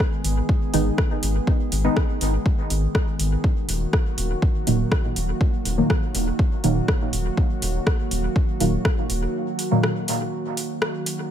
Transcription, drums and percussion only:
0.24 open hi-hat
0.49 kick
0.74 open hi-hat
0.98 kick, cross-stick
1.23 open hi-hat
1.47 kick
1.72 open hi-hat
1.97 kick, cross-stick
2.21 open hi-hat
2.46 kick
2.70 open hi-hat
2.95 kick, cross-stick
3.20 open hi-hat
3.44 kick
3.69 open hi-hat
3.93 kick, cross-stick
4.18 open hi-hat
4.42 kick
4.67 open hi-hat
4.92 kick, cross-stick
5.16 open hi-hat
5.41 kick
5.65 open hi-hat
5.90 kick, cross-stick
6.15 open hi-hat
6.39 kick
6.64 open hi-hat
6.88 kick, cross-stick
7.13 open hi-hat
7.37 kick
7.62 open hi-hat
7.87 kick, cross-stick
8.11 open hi-hat
8.36 kick
8.60 open hi-hat
8.85 kick, cross-stick
9.10 open hi-hat
9.59 open hi-hat
9.83 cross-stick
10.08 open hi-hat
10.57 open hi-hat
10.82 cross-stick
11.06 open hi-hat

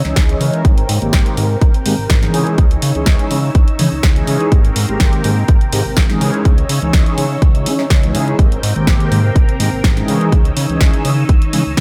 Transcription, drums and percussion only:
0.05 snare, closed hi-hat
0.16 kick, snare, closed hi-hat
0.29 closed hi-hat
0.41 open hi-hat
0.54 closed hi-hat
0.65 kick, closed hi-hat
0.78 closed hi-hat
0.89 open hi-hat
1.02 closed hi-hat
1.13 kick, snare, closed hi-hat
1.26 closed hi-hat
1.37 open hi-hat
1.61 kick, closed hi-hat
1.74 closed hi-hat
1.86 open hi-hat
2.10 kick, snare, closed hi-hat
2.23 snare, closed hi-hat
2.34 open hi-hat
2.47 closed hi-hat
2.58 kick, closed hi-hat
2.71 closed hi-hat
2.82 open hi-hat
2.95 closed hi-hat
3.06 kick, snare, closed hi-hat
3.19 closed hi-hat
3.31 open hi-hat
3.55 kick, closed hi-hat
3.68 closed hi-hat
3.79 open hi-hat
4.03 kick, snare, closed hi-hat
4.16 closed hi-hat
4.27 open hi-hat
4.40 closed hi-hat
4.52 kick, closed hi-hat
4.65 closed hi-hat
4.76 open hi-hat
4.89 closed hi-hat
5.00 kick, snare, closed hi-hat
5.13 closed hi-hat
5.24 open hi-hat
5.48 kick, closed hi-hat
5.61 closed hi-hat
5.73 open hi-hat
5.97 kick, snare, closed hi-hat
6.10 snare, closed hi-hat
6.21 open hi-hat
6.34 closed hi-hat
6.45 kick, closed hi-hat
6.58 closed hi-hat
6.69 open hi-hat
6.82 closed hi-hat
6.93 kick, snare, closed hi-hat
7.06 closed hi-hat
7.18 open hi-hat
7.42 kick, closed hi-hat
7.55 closed hi-hat
7.66 open hi-hat
7.79 snare
7.90 kick, snare, closed hi-hat
8.03 closed hi-hat
8.15 open hi-hat
8.28 closed hi-hat
8.39 kick, closed hi-hat
8.52 closed hi-hat
8.63 open hi-hat
8.76 closed hi-hat
8.87 kick, snare, closed hi-hat
9.00 closed hi-hat
9.12 open hi-hat
9.36 kick, closed hi-hat
9.49 closed hi-hat
9.60 open hi-hat
9.84 kick, snare, closed hi-hat
9.97 snare, closed hi-hat
10.08 open hi-hat
10.21 closed hi-hat
10.32 kick, closed hi-hat
10.45 closed hi-hat
10.57 open hi-hat
10.69 closed hi-hat
10.81 kick, snare, closed hi-hat
10.94 closed hi-hat
11.05 open hi-hat
11.29 kick, closed hi-hat
11.42 closed hi-hat
11.53 open hi-hat
11.77 snare, closed hi-hat

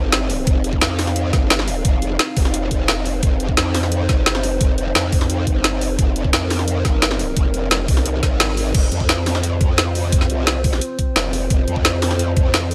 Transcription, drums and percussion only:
0.12 snare, closed hi-hat
0.30 open hi-hat
0.47 kick, closed hi-hat
0.64 closed hi-hat
0.73 kick
0.81 snare, closed hi-hat
0.99 snare, open hi-hat
1.07 snare
1.16 closed hi-hat
1.33 kick, snare, closed hi-hat
1.50 snare, closed hi-hat
1.59 snare
1.68 open hi-hat
1.85 kick, closed hi-hat
2.02 closed hi-hat
2.19 snare, closed hi-hat
2.37 kick, open hi-hat
2.45 snare
2.54 closed hi-hat
2.71 kick, closed hi-hat
2.88 snare, closed hi-hat
3.06 open hi-hat
3.23 kick, closed hi-hat
3.40 closed hi-hat
3.49 kick
3.57 snare, closed hi-hat
3.74 snare, open hi-hat
3.83 snare
3.92 closed hi-hat
4.09 kick, snare, closed hi-hat
4.26 snare, closed hi-hat
4.35 snare
4.43 open hi-hat
4.61 kick, closed hi-hat
4.78 closed hi-hat
4.95 snare, closed hi-hat
5.12 kick, open hi-hat
5.21 snare
5.30 closed hi-hat
5.47 kick, closed hi-hat
5.64 snare, closed hi-hat
5.81 open hi-hat
5.99 kick, closed hi-hat
6.16 closed hi-hat
6.24 kick
6.33 snare, closed hi-hat
6.50 snare, open hi-hat
6.59 snare
6.68 closed hi-hat
6.85 kick, snare, closed hi-hat
7.02 snare, closed hi-hat
7.11 snare
7.19 open hi-hat
7.37 kick, closed hi-hat
7.54 closed hi-hat
7.71 snare, closed hi-hat
7.88 kick, open hi-hat
7.97 snare
8.06 closed hi-hat
8.23 kick, snare, closed hi-hat
8.40 snare, closed hi-hat
8.57 open hi-hat
8.74 kick, closed hi-hat, crash
8.92 closed hi-hat
9.00 kick
9.09 snare, closed hi-hat
9.26 snare, open hi-hat
9.35 snare
9.43 closed hi-hat
9.61 kick, closed hi-hat
9.78 snare, closed hi-hat
9.95 open hi-hat
10.12 kick, closed hi-hat
10.21 snare
10.30 closed hi-hat
10.47 snare, closed hi-hat
10.64 kick, open hi-hat
10.73 snare
10.81 closed hi-hat
10.99 kick, closed hi-hat
11.16 snare, closed hi-hat
11.33 open hi-hat
11.50 kick, closed hi-hat
11.68 closed hi-hat
11.76 kick
11.85 snare, closed hi-hat
12.02 snare, open hi-hat
12.11 snare
12.19 closed hi-hat
12.37 kick, closed hi-hat
12.54 snare, closed hi-hat
12.71 open hi-hat

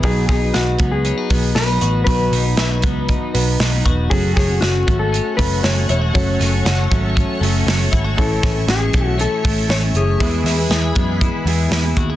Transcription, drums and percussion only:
0.03 kick, hi-hat pedal, open hi-hat
0.29 kick, snare, hi-hat pedal, open hi-hat
0.54 snare, hi-hat pedal, open hi-hat
0.79 kick, hi-hat pedal, open hi-hat
1.05 hi-hat pedal, open hi-hat
1.30 kick, hi-hat pedal, open hi-hat
1.56 snare, hi-hat pedal, open hi-hat
1.81 hi-hat pedal, open hi-hat
2.07 kick, hi-hat pedal, open hi-hat
2.33 hi-hat pedal, open hi-hat
2.57 snare, hi-hat pedal, open hi-hat
2.82 kick, hi-hat pedal, open hi-hat
3.09 kick, hi-hat pedal, open hi-hat
3.35 hi-hat pedal, open hi-hat
3.60 snare, hi-hat pedal, open hi-hat
3.86 kick, hi-hat pedal, open hi-hat
4.11 kick, hi-hat pedal, open hi-hat
4.37 kick, snare, hi-hat pedal, open hi-hat
4.62 snare, hi-hat pedal, open hi-hat
4.88 kick, hi-hat pedal, open hi-hat
5.14 hi-hat pedal, open hi-hat
5.39 kick, hi-hat pedal, open hi-hat
5.64 snare, hi-hat pedal, open hi-hat
5.89 hi-hat pedal, open hi-hat
6.15 kick, hi-hat pedal, open hi-hat
6.41 snare, hi-hat pedal, open hi-hat
6.66 snare, hi-hat pedal, open hi-hat
6.92 kick, hi-hat pedal, open hi-hat
7.17 kick, hi-hat pedal, open hi-hat
7.43 hi-hat pedal, open hi-hat
7.68 snare, hi-hat pedal, open hi-hat
7.93 kick, hi-hat pedal, open hi-hat
8.18 kick, hi-hat pedal, open hi-hat
8.43 kick, snare, hi-hat pedal, open hi-hat
8.68 snare, hi-hat pedal, open hi-hat
8.93 kick, hi-hat pedal, open hi-hat
9.19 hi-hat pedal, open hi-hat
9.45 kick, hi-hat pedal, open hi-hat
9.70 snare, hi-hat pedal, open hi-hat
9.95 hi-hat pedal, open hi-hat
10.20 kick, hi-hat pedal, open hi-hat
10.46 snare, hi-hat pedal, open hi-hat
10.71 snare, hi-hat pedal, open hi-hat
10.95 kick, hi-hat pedal, open hi-hat
11.21 kick, hi-hat pedal, open hi-hat
11.47 hi-hat pedal, open hi-hat
11.71 snare, hi-hat pedal, open hi-hat
11.97 kick, hi-hat pedal, open hi-hat

